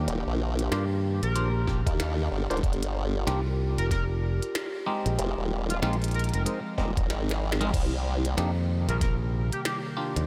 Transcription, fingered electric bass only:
0.72 1.20 G2 loud
1.23 1.83 A#1 loud
3.27 3.75 C2 loud
3.78 4.39 F1 loud
5.06 5.16 A#1 medium
5.82 6.30 A#1 loud
6.33 6.44 F1 loud
8.37 8.86 F2 loud
8.88 9.49 A#1 loud
10.16 10.27 D#2 medium

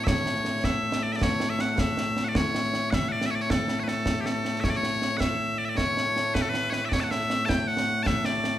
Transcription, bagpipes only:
0.00 8.59 A2 medium
0.00 8.59 A3 medium
0.00 0.07 E5 medium
0.07 0.64 C#5 medium
0.64 1.03 E5 medium
1.03 1.12 D5 medium
1.12 1.23 D5 medium
1.12 1.16 E5 medium
1.23 1.50 C#5 medium
1.50 1.61 E5 medium
1.61 1.70 F#5 loud
1.70 1.79 F#5 medium
1.79 2.24 E5 loud
2.24 2.28 F#5 medium
2.28 2.36 D5 medium
2.36 2.90 C#5 medium
2.90 3.08 E5 medium
2.90 2.94 F#5 medium
3.08 3.26 D5 medium
3.08 3.12 F#5 medium
3.26 3.31 E5 medium
3.31 3.35 C#5 medium
3.35 3.41 D5 medium
3.41 3.51 C#5 medium
3.51 3.80 A4 medium
3.80 3.88 B4 medium
3.80 3.84 C#5 medium
3.88 4.21 A4 medium
4.21 4.26 G4 medium
4.26 4.60 A4 medium
4.60 4.69 C#5 medium
4.60 4.64 E5 medium
4.69 4.76 D5 medium
4.76 5.17 C#5 loud
5.17 5.58 E5 medium
5.17 5.20 F#5 medium
5.58 5.65 D5 medium
5.65 5.69 E5 medium
5.69 5.77 D5 medium
5.77 6.35 C#5 loud
6.35 6.42 B4 loud
6.42 6.49 A4 medium
6.49 6.70 B4 loud
6.70 6.85 B4 medium
6.70 6.74 C#5 medium
6.85 6.93 D5 medium
6.85 6.89 E5 medium
6.93 7.00 C#5 loud
7.00 7.11 F#5 medium
7.00 7.04 A5 medium
7.11 7.45 E5 loud
7.45 7.59 G5 loud
7.45 7.49 A5 loud
7.59 7.68 G5 medium
7.68 8.03 F#5 loud
8.03 8.26 E5 loud
8.03 8.07 A5 loud
8.26 8.59 D5 loud

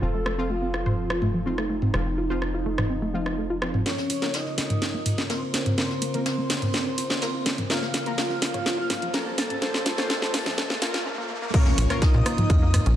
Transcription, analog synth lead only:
0.02 0.46 A4 loud
0.50 1.47 F4 loud
1.46 3.76 D#4 loud
3.86 4.35 C#4 loud
4.34 5.20 D#4 loud
5.30 7.60 C4 loud
7.70 8.14 F4 loud
8.18 9.15 F4 loud
9.14 11.06 A4 loud
11.54 11.98 C#4 loud
12.02 12.88 D#4 loud

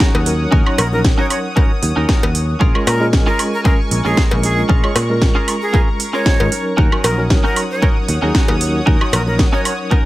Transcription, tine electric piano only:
0.00 0.23 F#3 medium
0.00 0.23 C#4 medium
0.00 0.23 D#4 medium
0.00 0.24 G#4 loud
0.26 0.63 F#3 medium
0.26 0.63 C#4 medium
0.26 0.63 D#4 medium
0.26 0.63 A#4 medium
0.66 0.80 F#3 medium
0.66 0.80 C#4 medium
0.66 0.80 D#4 medium
0.66 0.80 C#5 loud
0.92 2.59 F#3 medium
0.92 2.59 C#4 medium
0.92 2.60 D#4 medium
0.92 2.60 A#4 medium
2.75 2.97 G#3 medium
2.75 2.97 C#4 medium
2.75 2.97 F4 medium
2.75 2.97 A#4 medium
3.00 4.02 G#3 loud
3.00 4.02 C#4 loud
3.00 4.02 F4 loud
3.00 4.03 A#4 loud
4.05 4.40 G#3 medium
4.05 4.41 C#4 medium
4.05 4.41 F4 medium
4.05 4.41 G#4 loud
4.43 4.80 G#3 medium
4.43 4.80 C#4 medium
4.43 4.80 F4 medium
4.43 4.81 A#4 medium
4.83 4.97 G#3 medium
4.83 4.98 C#4 medium
4.83 4.98 F4 medium
4.83 4.98 C#5 loud
5.09 6.23 G#3 medium
5.09 6.24 C#4 medium
5.09 6.24 F4 medium
5.09 6.24 A#4 medium
6.26 6.37 G#3 medium
6.26 6.37 C#4 medium
6.26 6.37 F4 medium
6.26 6.37 C5 loud
6.40 6.49 G#3 medium
6.40 6.49 C#4 medium
6.40 6.49 F4 medium
6.40 6.50 A#4 medium
6.51 6.89 F#3 medium
6.51 6.89 C#4 medium
6.51 6.89 D#4 medium
6.51 6.89 A#4 medium
6.92 7.14 F#3 medium
6.92 7.14 C#4 medium
6.92 7.14 D#4 medium
6.92 7.14 A#4 medium
7.18 8.19 F#3 loud
7.18 8.19 C#4 medium
7.18 8.20 D#4 medium
7.18 8.20 A#4 loud
8.23 8.58 F#3 medium
8.23 8.58 C#4 medium
8.23 8.58 D#4 medium
8.23 8.58 G#4 loud
8.60 8.97 F#3 medium
8.60 8.98 C#4 medium
8.60 8.98 D#4 medium
8.60 8.98 A#4 medium
9.01 9.15 F#3 medium
9.01 9.15 C#4 medium
9.01 9.15 D#4 medium
9.01 9.15 C#5 loud
9.26 10.05 F#3 medium
9.26 10.05 C#4 medium
9.26 10.05 D#4 medium
9.26 10.05 A#4 medium

